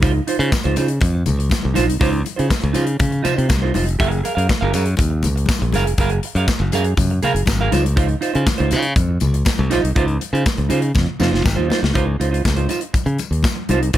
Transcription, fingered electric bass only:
0.00 0.19 C#2 medium
0.39 0.50 C#3 loud
0.65 0.75 C#2 loud
0.78 0.98 C#3 loud
1.02 1.22 F2 loud
1.28 1.48 C#2 medium
1.65 1.75 C2 loud
1.78 1.87 A#1 loud
1.90 2.00 C2 medium
2.01 2.22 C#2 loud
2.39 2.49 C#3 medium
2.64 2.74 C#2 loud
2.76 2.96 C#3 loud
3.00 3.21 C#3 loud
3.38 3.48 C3 medium
3.50 3.71 C2 medium
3.75 3.96 F1 medium
4.00 4.21 F#1 loud
4.37 4.47 F#2 medium
4.62 4.72 F#1 loud
4.74 4.95 F#2 loud
4.99 5.26 D#2 medium
5.25 5.45 C#2 medium
5.62 5.72 A#1 medium
5.74 5.86 F#1 loud
5.86 5.96 F1 medium
5.98 6.19 F#1 loud
6.35 6.46 F#2 loud
6.60 6.70 F#1 loud
6.72 6.93 F#2 loud
6.98 7.18 F#2 medium
7.34 7.45 F#1 medium
7.47 7.68 G#1 medium
7.72 8.14 C#2 loud
8.35 8.45 C#3 medium
8.60 8.74 C#2 loud
8.72 8.93 C#3 loud
8.96 9.17 F2 medium
9.22 9.42 C#2 medium
9.59 9.71 C2 loud
9.71 9.82 A#1 loud
9.84 9.94 C2 medium
9.96 10.17 C#2 loud
10.33 10.43 C#3 medium
10.58 10.69 C#2 loud
10.70 10.91 C#3 medium
10.96 11.06 F2 medium
11.20 11.31 F2 loud
11.33 11.43 F1 medium
11.45 11.56 G#1 loud
11.58 11.68 D#2 loud
11.83 11.93 C#2 medium
11.96 12.16 C#2 loud
12.20 12.41 C#2 medium
12.45 12.66 C#2 medium
12.94 muted fingered electric bass stroke soft
13.06 13.17 C#3 loud
13.31 13.42 D#2 medium
13.69 13.90 C2 medium
13.94 13.98 C#2 loud

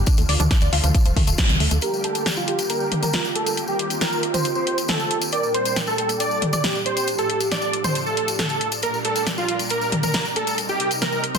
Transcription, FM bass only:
0.18 0.25 D2 medium
0.29 0.36 D2 loud
0.40 0.47 D2 medium
0.62 0.69 D2 medium
0.73 0.80 D2 loud
0.84 0.91 D2 medium
1.06 1.13 D1 medium
1.16 1.24 D2 loud
1.27 1.35 D1 medium
1.49 1.57 C2 medium
1.60 1.68 D2 loud
1.71 1.79 D2 medium

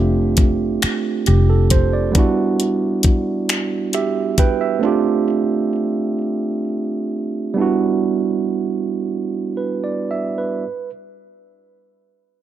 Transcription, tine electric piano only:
0.00 2.10 A3 medium
0.00 2.11 C4 medium
0.00 2.12 D4 medium
0.00 2.13 F4 medium
0.00 1.25 G4 medium
1.27 1.48 G4 medium
1.50 1.70 A4 medium
1.71 1.92 C5 medium
1.93 2.35 D5 medium
2.12 4.76 G3 medium
2.12 4.77 B3 medium
2.12 4.78 D4 medium
2.17 4.79 E4 medium
2.17 3.91 F#4 medium
3.94 4.36 G4 medium
3.94 4.35 E5 medium
4.39 4.60 B4 medium
4.39 4.80 G5 medium
4.61 5.03 E5 medium
4.79 7.51 A3 medium
4.79 7.52 C4 medium
4.79 7.53 D4 medium
4.85 7.54 F4 medium
4.85 7.54 G4 medium
7.54 10.58 G3 medium
7.54 10.59 B3 medium
7.54 10.60 D4 medium
7.59 10.61 E4 medium
7.59 10.62 F#4 medium
9.57 9.81 B4 soft
9.84 10.08 D5 soft
10.11 10.36 E5 soft
10.38 10.90 B4 soft

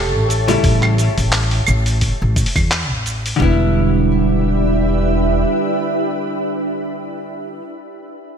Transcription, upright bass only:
0.00 0.15 E1 medium
0.15 0.55 A1 medium
0.64 1.06 A1 loud
1.18 1.58 A1 loud
1.68 2.10 A1 loud
2.22 2.41 A1 loud
2.56 2.91 E2 medium
2.91 3.31 A1 medium
3.40 5.43 E1 loud

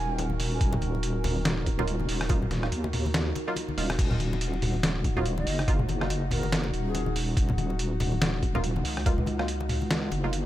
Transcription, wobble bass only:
0.00 0.59 D#1 loud
0.61 1.44 D#1 medium
1.45 2.07 D#1 loud
2.09 2.71 D#1 medium
2.72 3.34 D#2 loud
3.78 3.97 D#1 loud
3.99 4.82 D#1 loud
4.83 5.45 D#1 loud
5.47 6.72 F#1 loud
6.73 7.35 D#1 loud
7.37 8.20 D#1 medium
8.21 8.83 D#1 loud
8.85 10.10 C#2 loud
10.12 10.46 F#1 loud

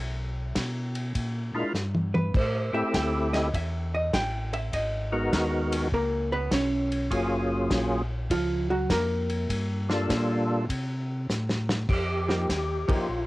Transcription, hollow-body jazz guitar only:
2.14 2.34 B4 medium
2.37 2.74 C5 medium
2.74 2.94 E5 medium
2.95 3.33 G5 medium
3.33 3.53 D#5 medium
3.55 3.93 E5 medium
3.94 4.13 D#5 medium
4.14 4.52 G5 loud
4.54 4.73 E5 medium
4.74 5.29 D#5 medium
5.94 6.31 A#3 medium
5.94 6.31 A#4 medium
6.32 6.52 B3 medium
6.32 6.51 B4 loud
6.53 7.48 C#4 medium
6.53 7.48 C#5 medium
8.31 8.70 F3 medium
8.31 8.69 F4 medium
8.70 8.90 F#3 medium
8.70 8.90 F#4 medium
8.91 9.86 A#3 medium
8.91 9.86 A#4 medium
12.28 12.46 F3 soft
12.28 12.46 A#3 soft
12.28 12.47 D#4 medium
12.28 12.47 G4 soft
12.88 13.06 F3 medium
12.88 13.06 A#3 medium
12.88 13.06 D#4 medium
12.88 13.06 G4 medium

